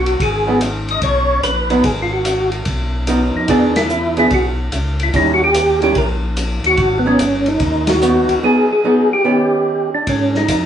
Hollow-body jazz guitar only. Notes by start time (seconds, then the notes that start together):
0.47 F#3 B3 D#4
1.70 F#3 B3 D#4
3.08 F#3 B3 D#4
3.49 E3 B3 D4 G#4
4.17 E3 B3 D4 G#4
5.14 D#3 G3 C#4 E4
5.82 D#3 G3 C#4 E4
7.06 F#3 B3 D#4
8.02 F#3 B3 D#4
8.43 F#3 B3 D#4
8.84 F#3 B3 D#4
9.25 D#3 B3 C#4 G4